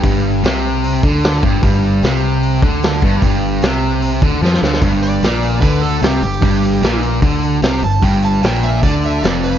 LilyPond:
<<
  \new Staff \with { instrumentName = "Lead electric guitar" } { \time 4/4 \key c \major \tempo 4 = 150 r1 | r1 | r1 | r8 d''4. b'8 a'8 g'8 g'8~ |
g'4. r2 a''8 | g''8 a''8 g''8 e''8 d''8 e''8 d''8 b'8 | }
  \new Staff \with { instrumentName = "Distorted electric guitar" } { \clef bass \time 4/4 \key c \major g,4 c4. d4 g,8 | g,4 c4. d4 g,8 | g,4 c4. d8 f8 d8 | g,4 bes,4 d4 c8 g,8 |
g,4 bes,4 d4 c8 g,8 | g,4 bes,4 d4 f,4 | }
  \new Staff \with { instrumentName = "Fingered electric bass" } { \clef bass \time 4/4 \key c \major g,,4 c,4. d,4 g,,8 | g,,4 c,4. d,4 g,,8 | g,,4 c,4. d,8 f,8 d,8 | g,,4 bes,,4 d,4 c,8 g,,8 |
g,,4 bes,,4 d,4 c,8 g,,8 | g,,4 bes,,4 d,4 f,,4 | }
  \new DrumStaff \with { instrumentName = "Drums" } \drummode { \time 4/4 <hho bd>4 <hho sn>4 hho8 bd8 <hho sn>8 bd8 | <hho bd>4 <hho sn>4 hho8 bd8 <hho sn>8 bd8 | <hho bd>4 <hho sn>4 hho8 bd8 sn16 sn16 sn16 sn16 | <hho bd>8 hho8 <hho sn>8 hho8 <hho bd>8 hho8 <hho sn>8 hho8 |
<hho bd>8 hho8 <hho sn>8 hho8 <hho bd>8 hho8 <hho sn>8 hho8 | <hho bd>8 hho8 <hho sn>8 hho8 <hho bd>8 hho8 <hho sn>8 hho8 | }
>>